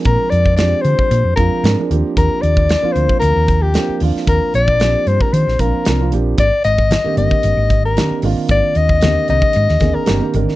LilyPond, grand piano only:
\new Staff \with { instrumentName = "Grand piano" } { \time 4/4 \key ees \major \tempo 4 = 114 <f aes c' d' bes'>4 <f aes c' d' g'>4. <f aes c' d' f'>8 <f aes c' d' bes'>16 <f aes c' d' bes'>16 <f bes c' d' g'>8~ | <f bes c' d' g'>4~ <f bes c' d' g'>16 <f bes c' d' f'>4.~ <f bes c' d' f'>16 <f bes c' d' bes'>8 <f bes c' d' f'>8~ | <f bes c' d' f'>4 <f bes c' d' g'>4. <f bes c' d' f'>8 <f bes c' d' bes'>16 <f bes c' d' f'>16 <f bes c' d' g'>8 | r4 r16 <d ees bes c' g'>4.~ <d ees bes c' g'>16 <ees bes c' d' g'>8 <ees bes c' d' f'>8~ |
<ees bes c' d' f'>4 <d ees bes c' g'>4. <ees bes c' d' aes'>8 <ees bes c' d' g'>16 <ees bes c' d' g'>16 <ees bes c' d' bes'>8 | }